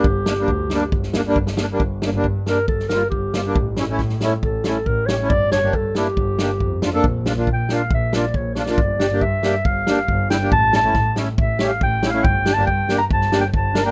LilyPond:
<<
  \new Staff \with { instrumentName = "Clarinet" } { \time 4/4 \tempo 4 = 138 g'2. r4 | r4. bes'8 a'8 bes'8 g'4~ | g'8 r4. a'8 a'8 bes'8 cis''8 | d''8 cis''8 a'8 g'2~ g'8 |
r4 g''8 f''8 e''8 d''8 cis''8 d''8~ | d''4 e''4 f''4. g''8 | a''8 a''4 r8 \tuplet 3/2 { e''4 f''8 g''4 f''8 } | \tuplet 3/2 { g''4 a''8 g''4 bes''8 a''4 g''8 a''4 bes''8 } | }
  \new Staff \with { instrumentName = "Accordion" } { \time 4/4 r8 <bes d'>16 <g bes d'>16 r8 <g bes d'>16 r8. <bes d'>16 <g bes d'>16 r8 <bes d'>16 <g bes d'>16 | r8 <bes d'>16 <g bes d'>16 r8 <g bes d'>16 r8. <g bes f'>16 r8. <bes f'>16 <g bes d'>16 | r8 <cis' e'>16 <a cis' e'>16 r8 <a cis' e'>16 r8. <a cis' e'>16 r8. <cis' g'>16 <a cis' e'>16 | r8 <d' g'>16 <bes d' g'>16 r8 <bes d' e'>16 r8. <bes d' g'>16 r8. <d' f'>16 <bes d' a'>16 |
r8 <d' f'>16 <bes d' f'>16 r8 <bes d' f'>16 r8. <bes d' f'>16 r8. <d' f'>16 <bes d' f'>16 | r8 <d' g'>16 <bes d' g'>16 r8 <bes d' g'>16 r8. <bes d' g'>16 r8. <d' e'>16 <bes d' g'>16 | r8 <cis' e'>16 <a cis' e'>16 r8 <a cis' e'>16 r8. <a cis' g'>16 r8. <cis' e'>16 <a cis' e'>16 | r8 <d' g'>16 <bes d' g'>16 r8 <bes d' g'>16 r8. <bes d' g'>16 r8. <d' bes'>16 <bes d' g'>16 | }
  \new Staff \with { instrumentName = "Double bass" } { \clef bass \time 4/4 g,,4 d,8 r8 g,,4 g,,8 r8 | g,,8. g,,16 g,4 g,,4 g,,4 | a,,8. a,,16 a,4 a,,4 a,,4 | g,,8. g,,16 g,4 g,,4 f,4 |
bes,,8. bes,,16 bes,4 bes,,4 bes,,4 | g,,8. g,,16 g,4 g,,4 g,,4 | a,,8. a,,16 a,4 a,,4 a,,4 | g,,8. g,,16 g,4 g,,4 g,,4 | }
  \new DrumStaff \with { instrumentName = "Drums" } \drummode { \time 4/4 bd8 sn8 bd8 sn8 bd16 sn16 sn8 bd16 sn16 sn8 | bd8 sn8 bd8 sn8 bd16 sn16 sn8 bd8 sn8 | bd8 sn8 <bd sn>16 sn16 sn8 bd8 sn8 bd8 sn8 | bd8 sn8 bd8 sn8 bd8 sn8 bd8 sn8 |
bd8 sn8 bd8 sn8 bd8 sn8 bd8 sn16 sn16 | bd8 sn8 bd8 sn8 bd8 sn8 bd8 sn8 | bd8 sn8 <bd sn>8 sn8 bd8 sn8 bd8 sn8 | bd8 sn8 bd8 sn8 bd16 sn16 sn8 bd8 sn8 | }
>>